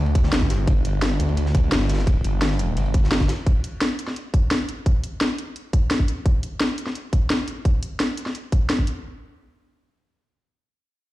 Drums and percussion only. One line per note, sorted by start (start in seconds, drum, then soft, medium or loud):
0.06 ride soft
0.15 kick loud
0.15 closed hi-hat loud
0.15 ride medium
0.23 snare soft
0.33 snare loud
0.33 closed hi-hat medium
0.33 ride medium
0.41 kick medium
0.41 snare soft
0.50 snare medium
0.50 closed hi-hat medium
0.50 ride medium
0.67 kick loud
0.67 closed hi-hat medium
0.67 ride medium
0.85 closed hi-hat loud
0.85 ride medium
1.02 snare loud
1.02 closed hi-hat medium
1.02 ride medium
1.20 closed hi-hat medium
1.20 ride medium
1.29 ride soft
1.37 closed hi-hat medium
1.37 ride medium
1.46 snare soft
1.55 kick loud
1.55 closed hi-hat medium
1.55 ride medium
1.72 snare loud
1.72 closed hi-hat medium
1.72 ride medium
1.81 snare medium
1.88 snare medium
1.88 closed hi-hat medium
1.88 ride medium
1.93 snare medium
1.93 ride medium
1.98 snare medium
1.98 ride medium
2.07 kick loud
2.07 closed hi-hat medium
2.07 ride medium
2.24 closed hi-hat medium
2.24 ride medium
2.42 snare loud
2.42 closed hi-hat medium
2.42 ride medium
2.51 snare soft
2.59 closed hi-hat medium
2.59 ride medium
2.77 closed hi-hat medium
2.77 ride medium
2.86 ride soft
2.94 kick loud
2.94 closed hi-hat medium
2.94 ride medium
3.04 snare medium
3.11 snare loud
3.11 closed hi-hat medium
3.11 ride medium
3.20 kick medium
3.20 snare medium
3.20 ride medium
3.28 snare loud
3.28 closed hi-hat medium
3.28 ride medium
3.46 kick loud
3.46 closed hi-hat medium
3.64 closed hi-hat medium
3.81 snare loud
3.81 closed hi-hat medium
3.99 closed hi-hat medium
4.08 snare soft
4.16 closed hi-hat medium
4.34 kick loud
4.34 closed hi-hat medium
4.51 snare loud
4.51 closed hi-hat medium
4.69 closed hi-hat medium
4.86 kick loud
4.86 closed hi-hat medium
5.04 closed hi-hat medium
5.21 snare loud
5.21 closed hi-hat medium
5.38 closed hi-hat medium
5.56 closed hi-hat medium
5.73 kick loud
5.73 closed hi-hat medium
5.91 snare loud
5.91 closed hi-hat medium
5.99 kick medium
6.08 closed hi-hat medium
6.26 kick loud
6.26 closed hi-hat medium
6.43 closed hi-hat medium
6.61 snare loud
6.61 closed hi-hat medium
6.78 closed hi-hat medium
6.87 snare soft
6.95 closed hi-hat medium
7.13 kick medium
7.13 closed hi-hat medium
7.30 snare loud
7.30 closed hi-hat medium
7.48 closed hi-hat medium
7.65 kick loud
7.65 closed hi-hat medium
7.83 closed hi-hat medium
8.00 snare loud
8.00 closed hi-hat medium
8.17 closed hi-hat medium
8.26 snare soft
8.35 closed hi-hat medium
8.52 kick loud
8.52 closed hi-hat medium
8.70 snare loud
8.70 closed hi-hat medium
8.78 kick medium
8.87 closed hi-hat medium